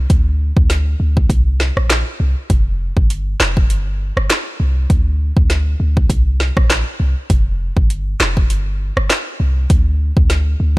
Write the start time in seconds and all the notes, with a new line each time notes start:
0.10 D2, kick, closed hi-hat
0.57 D2, kick
0.70 snare, closed hi-hat
1.00 D2
1.17 kick
1.30 C2, kick, closed hi-hat
1.60 snare
1.77 A#1, cross-stick
1.90 snare, clap, closed hi-hat
2.20 C2
2.50 F1, kick, closed hi-hat
2.97 G1, kick
3.10 closed hi-hat
3.40 F1, snare, clap
3.57 kick
3.70 G1, closed hi-hat
4.17 G1, cross-stick
4.30 snare, clap, closed hi-hat
4.60 C2
4.90 D2, kick, closed hi-hat
5.37 D2, kick
5.50 snare, closed hi-hat
5.80 D2
5.97 kick
6.10 C2, kick, closed hi-hat
6.40 snare
6.57 A#1, kick, cross-stick
6.70 snare, clap, closed hi-hat
7.00 C2
7.30 F1, kick, closed hi-hat
7.77 G1, kick
7.90 closed hi-hat
8.20 F1, snare, clap
8.37 kick
8.50 G1, closed hi-hat
8.97 G1, cross-stick
9.10 snare, clap, closed hi-hat
9.40 C2
9.70 D2, kick, closed hi-hat
10.17 D2, kick
10.30 snare, closed hi-hat
10.60 D2